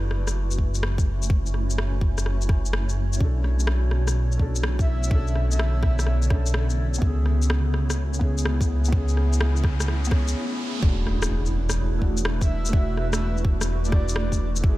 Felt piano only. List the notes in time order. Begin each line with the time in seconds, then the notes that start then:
3.16 C#4
3.20 D4 A4
4.38 C#4 D4
4.42 A4
5.07 C#4 D4
5.15 A4
6.27 C#4
6.31 D4 A4
6.98 B3 C#4
7.07 G#4
8.19 B3 C#4 G#4
8.88 B3
8.93 C#4 G#4
10.07 B3 C#4
10.15 G#4
10.79 A3 D4
10.87 F#4
11.99 A3 D4
12.03 F#4
12.69 A3
12.73 D4 F#4
13.88 A3
13.92 D4 F#4
14.61 A3 E4
14.69 G#4